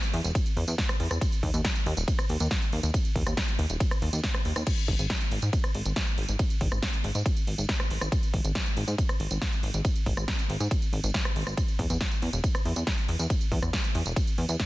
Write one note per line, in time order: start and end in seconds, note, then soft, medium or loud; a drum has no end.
0.03 closed hi-hat soft
0.03 tambourine soft
0.14 0.21 E2 loud
0.14 open hi-hat loud
0.24 0.32 E1 medium
0.24 closed hi-hat soft
0.24 tambourine medium
0.35 kick loud
0.35 closed hi-hat medium
0.35 ride medium
0.35 tambourine medium
0.46 closed hi-hat soft
0.46 tambourine soft
0.57 0.64 E2 medium
0.57 open hi-hat loud
0.68 0.75 E2 medium
0.68 closed hi-hat soft
0.68 tambourine medium
0.78 kick loud
0.78 snare loud
0.78 closed hi-hat medium
0.78 ride medium
0.89 cross-stick medium
0.89 closed hi-hat soft
0.89 tambourine soft
1.00 1.07 E2 loud
1.00 open hi-hat loud
1.11 1.18 E2 medium
1.11 cross-stick medium
1.11 closed hi-hat soft
1.11 tambourine medium
1.21 kick loud
1.21 closed hi-hat loud
1.21 ride medium
1.21 tambourine medium
1.32 closed hi-hat soft
1.32 tambourine soft
1.43 1.50 D#2 medium
1.43 kick medium
1.43 open hi-hat loud
1.54 1.61 D#2 medium
1.54 closed hi-hat soft
1.54 tambourine medium
1.65 kick loud
1.65 snare loud
1.65 closed hi-hat loud
1.65 ride medium
1.65 tambourine medium
1.76 closed hi-hat soft
1.76 tambourine soft
1.86 1.94 D#2 loud
1.86 open hi-hat loud
1.97 2.04 D#1 medium
1.97 closed hi-hat soft
1.97 tambourine medium
2.08 kick loud
2.08 closed hi-hat medium
2.08 ride medium
2.08 tambourine medium
2.19 cross-stick medium
2.19 closed hi-hat soft
2.19 tambourine soft
2.29 2.37 D#2 medium
2.29 open hi-hat loud
2.40 2.48 D#2 medium
2.40 closed hi-hat soft
2.40 tambourine medium
2.51 kick loud
2.51 snare loud
2.51 closed hi-hat loud
2.51 ride medium
2.51 tambourine medium
2.62 closed hi-hat soft
2.62 tambourine soft
2.73 2.80 D#2 loud
2.73 open hi-hat loud
2.83 2.91 D#2 medium
2.83 closed hi-hat soft
2.83 tambourine medium
2.94 kick loud
2.94 closed hi-hat loud
2.94 ride medium
2.94 tambourine medium
3.05 closed hi-hat soft
3.05 tambourine soft
3.16 3.23 D#2 medium
3.16 kick medium
3.16 open hi-hat loud
3.27 3.34 D#2 medium
3.27 cross-stick medium
3.27 closed hi-hat soft
3.27 tambourine medium
3.37 kick loud
3.37 snare loud
3.37 closed hi-hat loud
3.37 ride medium
3.37 tambourine medium
3.48 closed hi-hat soft
3.48 tambourine soft
3.59 3.66 D#2 loud
3.59 open hi-hat loud
3.70 3.77 D#1 medium
3.70 closed hi-hat soft
3.70 tambourine medium
3.80 kick loud
3.80 closed hi-hat loud
3.80 ride medium
3.80 tambourine medium
3.91 cross-stick medium
3.91 closed hi-hat soft
3.91 tambourine soft
4.02 4.09 D#2 medium
4.02 open hi-hat loud
4.13 4.20 D#2 medium
4.13 closed hi-hat soft
4.13 tambourine medium
4.24 kick loud
4.24 snare loud
4.24 closed hi-hat loud
4.24 ride medium
4.34 cross-stick medium
4.34 closed hi-hat soft
4.34 tambourine soft
4.45 4.53 D#2 loud
4.45 open hi-hat loud
4.56 4.63 D#2 medium
4.56 cross-stick medium
4.56 closed hi-hat soft
4.56 tambourine medium
4.67 kick loud
4.67 closed hi-hat loud
4.67 crash medium
4.67 ride medium
4.67 tambourine medium
4.78 closed hi-hat soft
4.78 tambourine soft
4.88 4.96 G#1 medium
4.88 kick medium
4.88 open hi-hat loud
4.99 5.07 G#1 medium
4.99 closed hi-hat soft
4.99 tambourine medium
5.10 kick loud
5.10 snare loud
5.10 closed hi-hat loud
5.10 ride medium
5.10 tambourine medium
5.21 closed hi-hat soft
5.21 tambourine soft
5.31 5.39 G#1 loud
5.31 open hi-hat loud
5.42 5.50 G#2 medium
5.42 closed hi-hat soft
5.42 tambourine medium
5.53 kick loud
5.53 closed hi-hat medium
5.53 ride medium
5.53 tambourine soft
5.64 cross-stick medium
5.64 closed hi-hat soft
5.64 tambourine soft
5.75 5.82 G#1 medium
5.75 open hi-hat loud
5.85 5.93 G#1 medium
5.85 tambourine medium
5.96 kick loud
5.96 snare loud
5.96 closed hi-hat loud
5.96 ride medium
5.96 tambourine medium
6.07 closed hi-hat soft
6.07 tambourine soft
6.18 6.25 G#1 loud
6.18 open hi-hat loud
6.29 6.36 G#1 medium
6.29 closed hi-hat soft
6.29 tambourine medium
6.39 kick loud
6.39 closed hi-hat medium
6.39 ride medium
6.39 tambourine medium
6.50 closed hi-hat soft
6.50 tambourine soft
6.61 6.68 G#1 medium
6.61 kick medium
6.61 open hi-hat loud
6.72 6.79 G#1 medium
6.72 cross-stick medium
6.72 tambourine medium
6.82 kick loud
6.82 snare loud
6.82 closed hi-hat medium
6.82 ride medium
6.82 tambourine medium
6.93 closed hi-hat soft
6.93 tambourine soft
7.04 7.12 G#1 loud
7.04 open hi-hat loud
7.15 7.22 G#2 medium
7.15 closed hi-hat soft
7.15 tambourine medium
7.26 kick loud
7.26 closed hi-hat medium
7.26 ride medium
7.26 tambourine soft
7.37 closed hi-hat soft
7.37 tambourine soft
7.47 7.55 G#1 medium
7.47 open hi-hat loud
7.58 7.66 G#1 medium
7.58 closed hi-hat soft
7.58 tambourine medium
7.69 kick loud
7.69 snare loud
7.69 closed hi-hat medium
7.69 ride medium
7.69 tambourine medium
7.80 cross-stick medium
7.80 closed hi-hat soft
7.80 tambourine soft
7.91 7.98 G#1 loud
7.91 open hi-hat loud
8.01 8.09 G#1 medium
8.01 cross-stick medium
8.01 tambourine medium
8.12 kick loud
8.12 closed hi-hat medium
8.12 ride medium
8.12 tambourine medium
8.23 closed hi-hat soft
8.23 tambourine soft
8.34 8.41 G#1 loud
8.34 kick medium
8.34 open hi-hat loud
8.44 8.52 G#1 medium
8.44 closed hi-hat soft
8.44 tambourine medium
8.55 kick loud
8.55 snare loud
8.55 closed hi-hat loud
8.55 ride medium
8.55 tambourine medium
8.66 closed hi-hat soft
8.66 tambourine soft
8.77 8.84 G#1 loud
8.77 open hi-hat loud
8.88 8.95 G#2 medium
8.88 closed hi-hat soft
8.88 tambourine medium
8.98 kick loud
8.98 closed hi-hat medium
8.98 ride medium
8.98 tambourine medium
9.09 cross-stick medium
9.09 closed hi-hat soft
9.09 tambourine soft
9.20 9.27 G#1 loud
9.20 open hi-hat loud
9.31 9.38 G#1 medium
9.31 closed hi-hat soft
9.31 tambourine medium
9.42 kick loud
9.42 snare loud
9.42 closed hi-hat medium
9.42 ride medium
9.42 tambourine medium
9.52 closed hi-hat soft
9.52 tambourine soft
9.63 9.71 G#1 loud
9.63 open hi-hat loud
9.74 9.81 G#1 medium
9.74 closed hi-hat soft
9.74 tambourine medium
9.85 kick loud
9.85 closed hi-hat medium
9.85 ride medium
9.85 tambourine medium
9.96 closed hi-hat soft
9.96 tambourine soft
10.06 10.14 G#1 loud
10.06 kick medium
10.06 open hi-hat loud
10.17 10.25 G#1 medium
10.17 cross-stick medium
10.17 tambourine medium
10.28 kick loud
10.28 snare loud
10.28 closed hi-hat medium
10.28 ride medium
10.28 tambourine medium
10.39 closed hi-hat soft
10.39 tambourine soft
10.50 10.57 G#1 loud
10.50 open hi-hat loud
10.60 10.68 G#2 medium
10.60 closed hi-hat soft
10.60 tambourine medium
10.71 kick loud
10.71 closed hi-hat medium
10.71 ride medium
10.71 tambourine medium
10.82 closed hi-hat soft
10.82 tambourine soft
10.93 11.00 G#1 medium
10.93 open hi-hat loud
11.03 11.11 G#1 medium
11.03 closed hi-hat soft
11.03 tambourine medium
11.14 kick loud
11.14 snare loud
11.14 closed hi-hat medium
11.14 ride medium
11.25 cross-stick medium
11.25 closed hi-hat soft
11.25 tambourine soft
11.36 11.43 G#1 loud
11.36 open hi-hat loud
11.47 11.54 G#1 medium
11.47 cross-stick medium
11.47 tambourine medium
11.57 kick loud
11.57 closed hi-hat medium
11.57 ride medium
11.57 tambourine medium
11.68 closed hi-hat soft
11.68 tambourine soft
11.79 11.86 E2 medium
11.79 kick medium
11.79 open hi-hat loud
11.90 11.97 E2 medium
11.90 closed hi-hat soft
11.90 tambourine medium
12.01 kick loud
12.01 snare loud
12.01 closed hi-hat medium
12.01 ride medium
12.01 tambourine medium
12.11 closed hi-hat soft
12.11 tambourine soft
12.22 12.30 E2 loud
12.22 open hi-hat loud
12.33 12.40 E1 medium
12.33 closed hi-hat soft
12.33 tambourine medium
12.44 kick loud
12.44 closed hi-hat medium
12.44 ride medium
12.44 tambourine medium
12.55 cross-stick medium
12.55 closed hi-hat soft
12.55 tambourine soft
12.65 12.73 E2 loud
12.65 open hi-hat loud
12.76 12.84 E2 medium
12.76 closed hi-hat soft
12.76 tambourine medium
12.87 kick loud
12.87 snare loud
12.87 closed hi-hat medium
12.87 ride medium
12.87 tambourine medium
12.98 closed hi-hat soft
12.98 tambourine soft
13.08 13.16 E2 loud
13.08 open hi-hat loud
13.19 13.27 E2 medium
13.19 tambourine medium
13.30 kick loud
13.30 closed hi-hat medium
13.30 ride medium
13.30 tambourine medium
13.41 closed hi-hat soft
13.41 tambourine soft
13.52 13.59 E2 loud
13.52 kick medium
13.52 open hi-hat loud
13.62 13.70 E2 medium
13.62 cross-stick medium
13.62 tambourine medium
13.73 kick loud
13.73 snare loud
13.73 closed hi-hat loud
13.73 ride medium
13.73 tambourine medium
13.84 closed hi-hat soft
13.84 tambourine soft
13.95 14.02 E2 loud
13.95 open hi-hat loud
14.06 14.13 E1 medium
14.06 closed hi-hat soft
14.06 tambourine medium
14.16 kick loud
14.16 closed hi-hat medium
14.16 ride medium
14.16 tambourine medium
14.27 closed hi-hat soft
14.27 tambourine soft
14.38 14.45 E2 medium
14.38 open hi-hat loud
14.49 14.56 E2 medium
14.49 closed hi-hat soft
14.49 tambourine medium
14.60 kick loud
14.60 snare loud
14.60 closed hi-hat medium
14.60 ride medium
14.60 tambourine medium